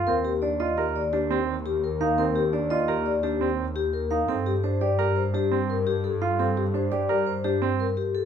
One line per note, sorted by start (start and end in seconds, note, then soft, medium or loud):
0.00 0.13 F4 medium
0.00 0.13 F5 medium
0.07 4.18 D#2 medium
0.07 0.30 C4 medium
0.07 0.30 A#4 medium
0.24 0.48 G4 medium
0.42 0.65 D4 medium
0.42 0.65 D5 medium
0.60 0.83 F4 medium
0.60 0.83 D#5 medium
0.78 1.01 G4 medium
0.78 1.01 A#4 medium
0.96 1.18 D5 medium
1.13 1.36 D4 medium
1.13 1.36 G4 medium
1.31 1.53 C4 medium
1.66 1.88 G4 medium
1.84 2.06 A#4 medium
2.01 2.23 D#4 medium
2.01 2.24 F5 medium
2.18 2.41 C4 medium
2.18 2.41 A#4 medium
2.36 2.58 G4 medium
2.53 2.76 D4 medium
2.53 2.76 D5 medium
2.70 2.94 F4 medium
2.70 2.93 D#5 medium
2.88 3.11 G4 medium
2.88 3.11 A#4 medium
3.06 3.29 D5 medium
3.23 3.46 D4 medium
3.23 3.46 G4 medium
3.41 3.64 C4 medium
3.76 3.99 G4 medium
3.93 4.16 A#4 medium
4.11 4.34 D#4 medium
4.11 4.34 F5 medium
4.28 8.25 G2 medium
4.28 4.51 C4 medium
4.28 4.51 A4 medium
4.46 4.69 G4 medium
4.64 4.87 D4 medium
4.64 4.86 C5 medium
4.81 5.04 G4 medium
4.81 5.04 D5 medium
4.99 5.22 G4 medium
4.99 5.22 A#4 medium
5.16 5.39 C5 medium
5.34 5.57 D4 medium
5.34 5.57 G4 medium
5.52 5.74 C4 medium
5.70 5.92 A#4 medium
5.87 6.09 G4 medium
6.04 6.27 A4 medium
6.22 6.44 F4 medium
6.22 6.45 F5 medium
6.39 6.62 C4 medium
6.39 6.62 A4 medium
6.57 6.80 G4 medium
6.74 6.97 D4 medium
6.74 6.97 C5 medium
6.92 7.15 G4 medium
6.92 7.15 D5 medium
7.09 7.32 G4 medium
7.09 7.32 A#4 medium
7.27 7.50 C5 medium
7.44 7.67 D4 medium
7.44 7.67 G4 medium
7.62 7.85 C4 medium
7.80 8.02 A#4 medium
7.97 8.20 G4 medium
8.15 8.25 A4 medium